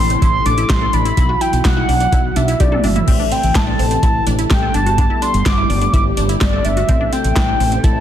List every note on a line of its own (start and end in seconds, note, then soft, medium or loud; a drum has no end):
0.00 0.15 A1 loud
0.00 1.15 C3 medium
0.00 1.15 E3 medium
0.00 1.15 A3 medium
0.00 4.70 E4 medium
0.00 1.15 A4 medium
0.00 0.22 C6 loud
0.10 0.18 C4 medium
0.10 closed hi-hat medium
0.22 0.39 A1 loud
0.22 0.39 E4 medium
0.22 0.47 C6 loud
0.22 kick loud
0.22 closed hi-hat medium
0.46 0.62 A1 loud
0.46 0.54 D4 medium
0.46 0.71 D6 loud
0.46 closed hi-hat medium
0.58 0.66 E4 medium
0.58 closed hi-hat medium
0.70 0.86 A1 loud
0.70 0.78 G4 medium
0.70 0.95 C6 loud
0.70 kick loud
0.70 snare loud
0.70 clap medium
0.70 closed hi-hat medium
0.82 0.90 A4 medium
0.93 1.10 A1 loud
0.93 1.02 D4 medium
0.93 1.43 B5 loud
0.93 closed hi-hat medium
1.05 1.14 E4 medium
1.05 closed hi-hat medium
1.17 1.34 B1 loud
1.17 3.06 B2 medium
1.17 3.06 E3 medium
1.17 3.06 F#3 medium
1.17 1.26 E4 loud
1.17 3.06 F#4 medium
1.17 kick loud
1.17 closed hi-hat medium
1.29 1.37 F#4 medium
1.41 1.58 E4 medium
1.41 1.65 G5 loud
1.41 closed hi-hat medium
1.53 1.61 B1 loud
1.53 closed hi-hat medium
1.65 1.81 B1 loud
1.65 1.73 F#4 medium
1.65 2.38 F#5 loud
1.65 kick loud
1.65 snare loud
1.65 clap loud
1.65 closed hi-hat medium
1.77 1.85 E4 medium
1.89 2.05 B1 loud
1.89 1.97 D4 medium
1.89 open hi-hat medium
2.00 2.09 D4 medium
2.00 closed hi-hat medium
2.12 2.29 B1 loud
2.12 2.29 E4 medium
2.12 kick loud
2.12 closed hi-hat medium
2.36 2.53 B1 loud
2.36 2.45 D4 medium
2.36 2.62 E5 loud
2.36 closed hi-hat medium
2.48 2.57 E4 medium
2.48 closed hi-hat medium
2.60 2.77 B1 loud
2.60 2.68 G4 medium
2.60 2.86 D5 medium
2.60 kick loud
2.60 closed hi-hat medium
2.60 high tom medium
2.72 2.80 A4 medium
2.72 mid tom medium
2.84 3.01 G1 medium
2.84 2.92 D4 medium
2.84 3.33 E5 loud
2.84 mid tom medium
2.84 open hi-hat medium
2.96 3.04 E4 medium
2.96 closed hi-hat soft
2.96 floor tom loud
3.08 3.24 A1 loud
3.08 4.73 C3 medium
3.08 4.73 E3 medium
3.08 8.00 A3 medium
3.08 3.16 C4 loud
3.08 4.73 A4 medium
3.08 kick loud
3.08 crash medium
3.20 3.28 D4 medium
3.31 3.48 C4 medium
3.31 3.57 G5 loud
3.31 closed hi-hat medium
3.43 3.52 A1 medium
3.43 closed hi-hat medium
3.55 3.72 A1 loud
3.55 3.64 E4 medium
3.55 4.03 A5 loud
3.55 kick loud
3.55 snare loud
3.55 clap loud
3.55 closed hi-hat medium
3.67 3.76 D4 medium
3.79 3.96 A1 loud
3.79 3.87 C4 medium
3.79 open hi-hat medium
3.91 3.99 C4 medium
3.91 closed hi-hat medium
4.03 4.19 A1 loud
4.03 4.20 E4 medium
4.03 4.25 A5 medium
4.03 kick loud
4.03 closed hi-hat medium
4.27 4.43 A1 loud
4.27 4.35 D4 medium
4.27 closed hi-hat medium
4.39 4.47 E4 medium
4.39 closed hi-hat medium
4.50 4.67 A1 loud
4.50 4.59 G4 medium
4.50 4.76 G5 medium
4.50 kick loud
4.50 snare loud
4.50 clap medium
4.50 closed hi-hat medium
4.62 4.71 A4 medium
4.74 5.08 G1 loud
4.74 6.87 D3 medium
4.74 6.86 G3 medium
4.74 6.86 B3 medium
4.74 4.83 D4 medium
4.74 6.87 G4 medium
4.74 5.24 A5 loud
4.74 closed hi-hat medium
4.86 4.95 F#4 medium
4.86 closed hi-hat medium
4.98 5.06 D4 medium
4.98 kick loud
4.98 closed hi-hat medium
5.10 5.18 E4 medium
5.22 5.39 D4 medium
5.22 5.47 C6 loud
5.22 closed hi-hat medium
5.34 5.42 G1 medium
5.34 closed hi-hat medium
5.46 5.62 G1 loud
5.46 5.54 F#4 medium
5.46 5.93 D6 loud
5.46 kick loud
5.46 snare loud
5.46 clap loud
5.46 closed hi-hat medium
5.58 5.66 E4 medium
5.70 5.86 G1 loud
5.70 5.78 D4 medium
5.70 open hi-hat medium
5.81 5.90 D4 medium
5.81 closed hi-hat medium
5.93 6.10 G1 loud
5.93 6.10 E4 medium
5.93 6.04 D6 loud
5.93 kick loud
5.93 closed hi-hat medium
6.17 6.34 G1 loud
6.17 6.26 D4 medium
6.17 closed hi-hat medium
6.29 6.38 E4 medium
6.29 closed hi-hat medium
6.41 6.58 G1 loud
6.41 6.49 G4 medium
6.41 6.66 D5 medium
6.41 kick loud
6.41 snare loud
6.41 clap medium
6.41 closed hi-hat medium
6.53 6.61 A4 medium
6.65 6.82 G1 medium
6.65 6.73 D4 medium
6.65 7.14 E5 loud
6.65 closed hi-hat medium
6.77 6.85 F#4 medium
6.77 closed hi-hat medium
6.89 7.05 A1 loud
6.89 8.00 C3 medium
6.89 8.00 E3 medium
6.89 6.97 C4 loud
6.89 8.00 E4 medium
6.89 8.00 A4 medium
6.89 kick loud
6.89 closed hi-hat medium
7.01 7.09 D4 medium
7.12 7.29 C4 medium
7.12 7.85 G5 loud
7.12 closed hi-hat medium
7.24 7.33 A1 loud
7.24 closed hi-hat soft
7.36 7.53 A1 loud
7.36 7.45 E4 medium
7.36 kick loud
7.36 snare loud
7.36 clap loud
7.36 closed hi-hat medium
7.48 7.57 D4 medium
7.60 7.77 A1 loud
7.60 7.68 C4 medium
7.60 open hi-hat medium
7.72 7.80 C4 medium
7.72 closed hi-hat medium
7.84 8.00 A1 loud
7.84 8.00 E4 medium
7.84 8.00 A5 loud
7.84 kick loud
7.84 closed hi-hat medium